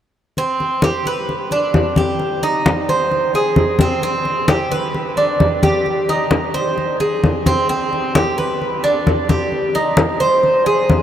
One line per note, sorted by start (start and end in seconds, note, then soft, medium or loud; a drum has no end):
0.37 0.82 C4 medium
0.37 high conga soft
0.60 high conga soft
0.82 1.06 G4 medium
0.82 high conga medium
1.06 1.51 B4 medium
1.06 high conga soft
1.29 high conga soft
1.51 1.96 D4 medium
1.51 high conga soft
1.74 high conga medium
1.96 2.42 G4 medium
1.96 high conga medium
2.19 high conga soft
2.43 2.88 D#4 medium
2.43 high conga soft
2.66 high conga medium
2.89 3.33 C5 medium
2.89 high conga soft
3.11 high conga soft
3.34 3.79 G#4 medium
3.34 high conga soft
3.56 high conga medium
3.79 4.02 C4 medium
3.79 high conga medium
4.02 4.48 C4 medium
4.02 high conga soft
4.25 high conga soft
4.48 4.71 G4 medium
4.48 high conga medium
4.71 5.16 B4 medium
4.71 high conga soft
4.94 high conga soft
5.17 5.62 D4 medium
5.17 high conga soft
5.40 high conga medium
5.63 6.07 G4 medium
5.63 high conga medium
5.86 high conga soft
6.09 6.53 D#4 medium
6.09 high conga soft
6.31 high conga medium
6.54 6.99 C5 medium
6.54 high conga soft
6.78 high conga soft
7.00 7.45 G#4 medium
7.00 high conga soft
7.24 high conga medium
7.46 7.68 C4 medium
7.46 high conga medium
7.69 8.13 C4 medium
7.69 high conga soft
7.93 high conga soft
8.15 8.37 G4 medium
8.15 high conga medium
8.38 8.82 B4 medium
8.38 high conga soft
8.62 high conga soft
8.84 9.28 D4 medium
8.84 high conga soft
9.07 high conga medium
9.29 9.73 G4 medium
9.29 high conga medium
9.52 high conga soft
9.75 10.19 D#4 medium
9.75 high conga soft
9.97 high conga medium
10.20 10.65 C5 medium
10.20 high conga soft
10.43 high conga soft
10.66 11.03 G#4 medium
10.66 high conga soft
10.90 high conga medium